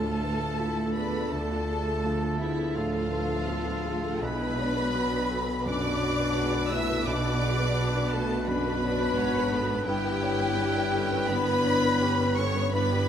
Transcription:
Already playing: D2 A2 A3 D4 F4 G#4 A4 B4 A5
0.05 A4
0.23 B4
0.40 A4
0.59 E4 F4
0.76 A4
0.95 B3 D4 G#4 B4 B5
1.13 A4
1.32 D2 A3 D4 A4 A5
1.51 F4
1.69 G#4
1.87 A4
2.04 F3 A3 F4
2.23 A4
2.40 B3 E4 G#4 E5
2.58 A4
2.74 A2 F3 A3 D4 F4 A4 F5
2.94 A4
3.10 A3 B4
3.29 A4
3.46 B3 F4
3.65 A4
3.84 A3 G#4
4.04 A4
4.22 B1 B2 G#3 B3 D4 E4 B4 B5
4.41 B4
4.59 D4 C#5
4.77 B4
4.94 F#3 D4 F#4
5.11 B4
5.30 F#4 A4
5.48 B4
5.66 F#2 F#3 D4 B4 D5 D6
5.83 B4
6.01 C#5
6.19 B4
6.36 G#3 F#4
6.55 B4
6.69 A3 E4 A4 E5 E6
6.89 B4
7.05 B1 B3 D4 F#4 B4 D5 D6
7.24 F#4
7.42 G#4
7.59 B4
7.76 B3 F#4
7.96 B4
8.11 A3 A4 A5
8.31 B4
8.47 F#2 B3 D4 B4 B5
8.66 B4
8.81 D4 C#5
9.01 B4
9.17 G#1 G#2 F#4 C#5
9.36 B4
9.52 B3 A4
9.71 B4
9.86 G1 G2 G3 B3 E4 G4 B4 G5
10.04 B4
10.22 C#5
10.39 B4
10.58 D4 G4
10.76 B4
10.93 C#4 A4
11.11 B4
11.28 D3 B3 D4 E4 B4 B5
11.48 B4
11.66 D4 C#5
11.84 B4
12.02 C#4 G4
12.21 B4
12.37 B3 C#4 A4 C#5 C#6
12.56 B4
12.73 G2 B3 D4 E4 B4 B5
12.92 G4

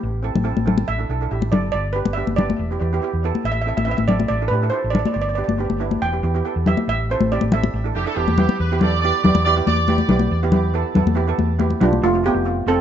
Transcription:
Already playing: G4
0.03 A1
0.23 C4 E4 A4
0.35 A1, high conga, low conga
0.44 C4 E4 A4
0.57 A1, high conga
0.66 C4 E4 A4, low conga
0.78 high conga
0.88 A1 E5
0.99 D4 E4 A4
1.09 B1 D4 E4 A4
1.21 D4 E4 A4
1.31 A1 D4 E4 G4
1.42 high conga
1.52 G1 D4 E4 A4 D5, low conga
1.72 G1 D5
1.93 B3 D4 G4 B4
2.05 G1, high conga
2.13 B3 E5
2.17 D4 G4
2.27 G1, high conga
2.36 B3 D4 G4 D5, low conga
2.50 high conga
2.59 E1
2.71 B3 E4 G4
2.80 E2 B3 E4 G4
2.93 B3 E4 G4
3.02 B3 E4 G4
3.13 E2
3.24 B3 E4 A4
3.35 high conga
3.44 A1 E5
3.52 E5
3.61 E5
3.66 C4 E4 A4 E5
3.77 A1 E5, high conga
3.85 C4 E4 B4 E5
3.91 E5
3.97 A1 E5, high conga
4.08 C4 E4 A4 D5, low conga
4.20 high conga
4.28 A1 D5
4.42 D4 E4 A4
4.48 A2 B4
4.52 D4 E4 G4
4.62 D4 E4 A4
4.70 D4 E4 A4 C5
4.84 A1
4.90 D4 E4 D5
4.95 A4, low conga
4.99 D5
5.05 D5, high conga
5.14 G1 D5
5.22 D5
5.29 D5
5.35 B3 D4 G4 D5
5.44 G1 D5
5.49 high conga
5.58 B3 D4 G4
5.70 G1, high conga
5.80 B3 D4 E4
5.91 high conga
6.02 E1 G5
6.12 B3 E4 G4
6.23 E2 B3 E4 G4
6.34 B3 E4 G4
6.45 B3 E4 A4
6.56 E2
6.66 B3 E4 G4 E5, low conga
6.77 high conga
6.88 A1 E5
7.10 C4 E4 A4 C5
7.20 A1, high conga
7.32 C4 E4 G4 D5
7.41 A1, high conga
7.52 C4 E4 A4 E5, low conga
7.64 high conga
7.74 A1
7.84 D4 E4 A4
7.94 F1 D4 E4 G4 A4
8.05 D4 E4 A4
8.15 E1 B3 E4 G4
8.28 E2, high conga
8.38 B3 E4 G4, low conga
8.49 high conga
8.59 E2 B4
8.71 B3 E4 G4
8.79 B3 E4 A4 D5, low conga
9.01 B3 E4 D5
9.05 G4
9.22 E2 B3 E4 G4 D5, low conga
9.35 E2, high conga
9.44 B3 E4 G4 D5
9.56 B3 E4 G4
9.66 E2 D5, high conga
9.88 B3 E4 G4, high conga
9.98 high conga
10.09 B1 B3 E4 G4, low conga
10.19 high conga
10.31 E2
10.43 B3 E4 G4
10.52 B3 E4 G4, low conga
10.74 B3 E4 A4
10.95 E2 B3 E4 A4, low conga
11.06 E2, high conga
11.15 B3 E4 G4
11.27 B3 E4 A4
11.38 E2, high conga
11.59 B3 E4 G4, high conga
11.70 high conga
11.81 B1 B3 D4 E4 F4 G4, low conga
11.93 high conga
12.02 F1 A3 F4
12.13 A3 C4 F4
12.23 A3 B3 C4 F4 G4
12.34 F1
12.45 A3 C4 F4
12.66 F1 A3 C4 F4 A4

